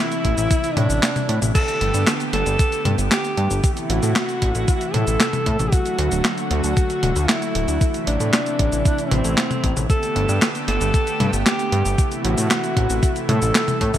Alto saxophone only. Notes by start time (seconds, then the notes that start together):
Already playing: E4
0.77 D4
1.55 A4
2.33 A4
3.12 G4
3.90 F#4
4.94 A4
5.72 F#4
6.50 F#4
7.29 E4
8.07 D4
9.11 C4
9.90 A4
10.68 A4
11.46 G4
12.24 F#4
13.29 A4